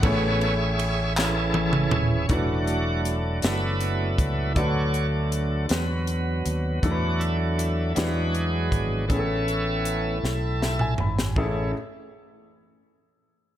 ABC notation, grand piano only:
X:1
M:6/8
L:1/16
Q:3/8=53
K:A
V:1 name="Grand piano"
[A,CEGc]12 | [A,DEB]12 | [A,DFB]12 | [A,DEAB]6 [=G,^G,DEB]6 |
[CEGA]12 | [CEGA]2 z8 z2 |]
V:2 name="Grand piano" clef=bass
A,,6 z6 | E,6 z6 | D,6 z6 | E,6 E,6 |
A,,6 z2 e g b2 | A,,,2 z8 z2 |]